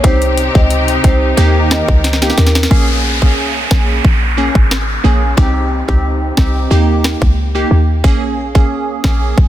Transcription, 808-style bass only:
0.04 C2
0.55 C#2
1.04 C2
1.37 D#2
1.88 C#2
2.38 D#2
2.71 A#1
3.22 C2
3.71 A#1
4.05 A#1
4.55 G#1
5.04 A#1
5.38 C2
5.89 C#2
6.38 C2
6.71 D#2
7.22 C#2
7.71 D#2
8.04 A#1
8.55 C2
9.04 A#1
9.38 A#1

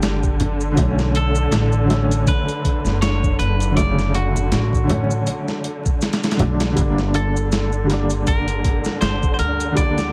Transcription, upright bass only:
Already playing: G1
0.77 B1
1.51 A1
2.85 F#1
3.39 F#1
4.51 A1
6.40 B1
6.77 G1
9.01 G1
9.39 D2

